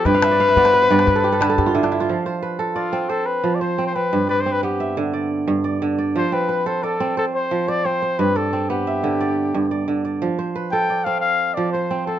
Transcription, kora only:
<<
  \new Staff \with { instrumentName = "Kora" } { \time 12/8 \key f \lydian \tempo 4. = 118 << { g'8 r1 r4. | r8 c''8 b'4 d''4 c''4. c''4 c'8~ | c'8 d''8 c'4 e''4 d''4. d''4 d''8~ | d''8 c'8 b'4 d''4 c''4. c''4 c''8~ |
c''8 d''8 c'4 e''4 d''4. d''4 d''8~ | d''8 c''8 b'4 d''4. r4 c''4 c''8 | } \\ { g''16 f''16 e''16 d''16 f''16 e''16 d''16 c''16 b'16 c''16 d''16 c''16 b'16 a'16 g'16 a'16 b'16 a'16 g'16 f'16 e'16 d'16 e'16 f'16~ | f'16 r1 r4. r16 | r1. | r1. |
r1. | r1. | } >> }
  \new Staff \with { instrumentName = "Kora" } { \clef bass \time 12/8 \key f \lydian g,4 r8 b4 g,4 r8 d4 d4 | f4 r8 a'4 c'4 r8 f4 c'4 | g,4 r8 b4 d4 r8 g,4 d4 | f4 r8 a'4 c'4 r8 f4 c'4 |
g,4 r8 b4 d4 r8 g,4 d4 | f4 r8 a'4 c'4 r8 f4 c'4 | }
>>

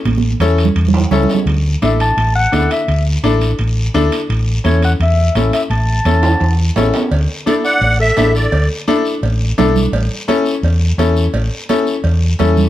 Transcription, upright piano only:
\new Staff \with { instrumentName = "Upright piano" } { \time 4/4 \key d \lydian \tempo 4 = 170 r4 <cis' e' a'>8 r4. <cis' e' a'>8 r8 | r4 <d' e' a'>8 r4. <d' e' a'>8 r8 | r4 <d' e' a'>8 r4. <d' e' a'>8 r8 | r4 <cis' e' a'>8 r4. <cis' e' a'>8 r8 |
r4 <cis' e' a'>8 r4. <cis' e' a'>8 r8 | r4 <d' e' a'>8 r4. <d' e' a'>8 r8 | r4 <d' e' a'>8 r4. <d' e' a'>8 r8 | r4 <cis' e' a'>8 r4. <cis' e' a'>8 r8 |
r4 <cis' e' a'>8 r4. <cis' e' a'>8 r8 | }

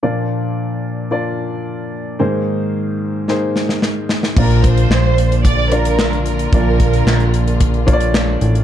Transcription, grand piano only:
<<
  \new Staff \with { instrumentName = "Grand piano" } { \time 4/4 \key bes \major \tempo 4 = 111 <bes d' f' d''>4. r8 <bes d' f' d''>4. r8 | <bes ees' aes' c''>4. r8 <bes ees' aes' c''>4. r8 | <bes d' f' d''>4. r4 <bes d' f' d''>4 r8 | <bes d' f' d''>4. r4 <bes d' f' des'' d''>4 r8 | }
  \new Staff \with { instrumentName = "Grand piano" } { \clef bass \time 4/4 \key bes \major <bes, f>1 | <aes, ees>1 | <bes, f>4. r2 r8 | <bes, f>4. r2 r8 | }
>>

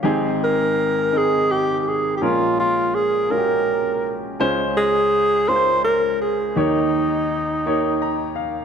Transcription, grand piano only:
<<
  \new Staff \with { instrumentName = "Grand piano" } { \time 6/8 \key aes \major \tempo 4. = 55 << { r2. | r2. | r2. | r2 bes''8 f''8 | } \\ { <c' ees' g' aes'>4 r8 <aes c' ees' bes'>4 r8 | <aes des' f' bes'>4 r8 <aes des' f' ges' g'>4 r8 | <aes des' f' c''>4 r8 <aes des' f' bes' c''>4 r8 | <bes ees' g' des''>4 r8 <bes ees' g' des''>4 r8 | } >> }
  \new Staff \with { instrumentName = "Grand piano" } { \clef bass \time 6/8 \key aes \major <aes,, aes,>2. | <bes,, bes,>2. | <des, des>2. | <ees, ees>2. | }
>>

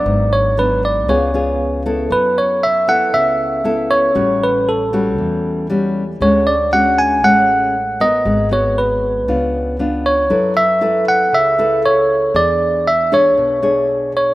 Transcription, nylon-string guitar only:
\new Staff \with { instrumentName = "Nylon-string guitar" } { \time 4/4 \key fis \minor \tempo 4 = 117 << { <fis b d'>4 <fis b d'>4 <b eis' gis'>8 <b eis' gis'>4 <b e' a'>8~ | <b e' a'>4 r8 <b e' a'>4. <b e' a'>4 | <g cis' fis'>4. <g cis' fis'>4. <g cis' fis'>8 r8 | <gis cis' fis'>8 r8 <gis cis' fis'>4 <gis cis' fis'>4 r8 <b fis' bes'>8~ |
<b fis' bes'>8 <b fis'>4. <b d' eis'>4 <b d' eis'>4 | <e' a' b'>8 r8 <e' a' b'>4. <e' a' b'>4. | <d' gis'>4 r8 <d' gis' cis''>4 <d' gis' cis''>4. | } \\ { gis,2 cis2 | fis2 cis2 | a,2 e2 | d2 a,2 |
gis2 cis2 | fis2 cis2 | e2 b,2 | } >> }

